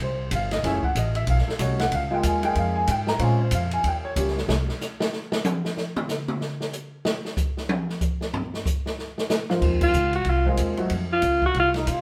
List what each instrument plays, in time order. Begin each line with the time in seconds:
0.00 upright bass C2, upright piano C5
0.31 upright bass G1, kick, hi-hat pedal, ride
0.35 upright piano F5
0.51 upright piano D#5, snare, ride
0.63 upright bass F#1, upright piano A3 C#4 E4 G#4 E5, kick, snare, ride
0.83 upright piano F#5, muted upright bass stroke, kick
0.95 upright bass A1, upright piano D#5, kick, hi-hat pedal, ride
1.15 upright piano E5, ride
1.27 upright bass B1, upright piano F5, kick, ride
1.38 snare
1.47 upright piano A4, muted upright bass stroke, snare
1.59 upright bass C2, upright piano A3 C#4 D#4 F#4 C#5, kick, hi-hat pedal, ride
1.79 upright piano F#5, snare, ride
1.91 upright bass C#2, upright piano F5, kick, ride
2.11 upright piano G#3 A#3 D#4 F4 G5
2.23 upright bass D#2, upright piano G#5, kick, hi-hat pedal, ride
2.43 upright piano G#3 A#3 D#4 G#4 G5, ride
2.55 upright bass F2, upright piano F5, kick, ride
2.76 upright piano G#5
2.87 upright bass G#2, upright piano G5, kick, hi-hat pedal, ride
3.07 upright piano A#5, snare
3.19 upright bass A#2, upright piano G#3 C4 C#4 F4 G#5, kick, ride
3.41 upright piano C5
3.51 upright bass F2, upright piano F5, kick, hi-hat pedal, ride
3.71 upright piano G#5, ride
3.84 upright bass D#2, upright piano G5, kick, ride
4.05 upright piano C#5
4.16 upright bass C#2, upright piano G3 A#3 C#4 G4, kick, hi-hat pedal, ride
4.27 snare
4.38 snare
4.48 upright bass C2, snare
4.69 snare
4.81 snare, hi-hat pedal
5.00 snare
5.12 snare
5.32 snare
5.44 hi-hat pedal, high tom
5.65 snare
5.77 snare
5.96 mid tom
6.09 snare, hi-hat pedal
6.28 mid tom
6.41 snare
6.61 snare
6.73 hi-hat pedal
7.05 snare
7.25 snare
7.37 kick, hi-hat pedal
7.57 snare
7.69 high tom
7.89 snare
8.01 kick, hi-hat pedal
8.21 snare
8.34 floor tom
8.54 snare
8.66 kick, hi-hat pedal
8.86 snare
8.99 snare
9.18 snare
9.30 snare, hi-hat pedal
9.49 upright piano G#2 F3 A#3 C4 F4, snare
9.62 upright bass D#2, kick, crash
9.81 alto saxophone F4, kick, crash
9.94 upright bass C#2, hi-hat pedal
10.13 alto saxophone F#4, ride
10.25 upright bass C2, kick, ride
10.30 alto saxophone F4
10.45 upright piano G#3 A#3 C4 D#4 F4, kick
10.57 upright bass D#2, kick, hi-hat pedal, ride
10.77 upright piano F#3 A3 C4 D#4 F#4, ride
10.90 upright bass F2, kick, ride
11.13 alto saxophone F4
11.22 upright bass C#2, kick, hi-hat pedal, ride
11.42 alto saxophone F#4, kick
11.54 upright bass C2, ride
11.59 alto saxophone F4
11.74 trombone D#4, snare, ride
11.87 upright bass C3, trombone F4, kick, hi-hat pedal, ride